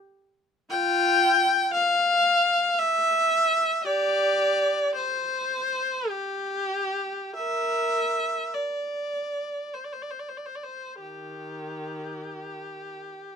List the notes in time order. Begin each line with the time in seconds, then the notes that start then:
0.70 F4 G5
1.74 F5
2.79 E5
3.86 G4 D5
4.95 C5
6.09 G4
7.36 A#4 E5
8.54 D5
9.74 C5
9.84 D5
9.92 C5
10.02 D5
10.11 C5
10.19 D5
10.29 C5
10.37 D5
10.46 C5
10.56 D5
10.64 C5
11.01 D#3 G4